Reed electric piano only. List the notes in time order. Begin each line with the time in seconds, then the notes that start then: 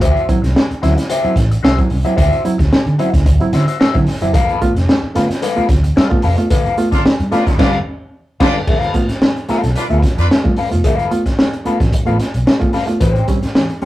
0.16 C4 E4
0.29 F#3 C4 E4
0.56 D3
0.83 F#3 C4 E4
0.97 C4 E4
1.10 D3
1.24 F#3 C4 E4
1.37 C4 E4
1.78 F#3 C4 E4
1.91 D3
2.05 F#3 C4 E4
2.18 D3
2.32 C4 E4
2.45 F#3 C4 E4
2.72 D3
2.99 F#3 C4 E4
3.26 D3
3.41 F#3 C4 E4
3.53 C4 E4
3.94 F#3 C4 E4
4.21 F#3 C4 E4
4.49 B3 F4
4.61 A3 B3 F4
4.89 G2 D3
5.15 A3 B3 F4
5.30 B3 F4
5.42 G2 D3
5.56 A3 B3 F4
6.10 A3 B3 F4
6.24 G2 D3
6.38 A3 B3 F4
6.51 G2 D3
6.65 B3 F4
6.78 A3 B3 F4
7.05 G2 D3
7.31 A3 B3 F4
7.59 G2 D3
8.40 G2 D3
8.67 G2 D3
8.81 B3 F4
8.94 A3 B3 F4
9.21 G2 D3
9.48 A3 B3 F4
9.63 B3 F4
9.76 G2 D3
9.90 A3 B3 F4
10.44 A3 B3 F4
10.57 G2 D3
10.71 A3 B3 F4
10.85 D3
10.98 B3 F4
11.11 A3 B3 F4
11.39 G2 D3
11.65 A3 B3 F4
11.79 B3 F4
11.92 G2 D3
12.06 A3 B3 F4
12.19 B3 F4
12.60 A3 B3 F4
12.73 D3
12.87 A3 B3 F4
13.00 A2 E3
13.15 C4 C#4
13.28 G3 C4 C#4
13.55 A2 E3
13.82 G3 C4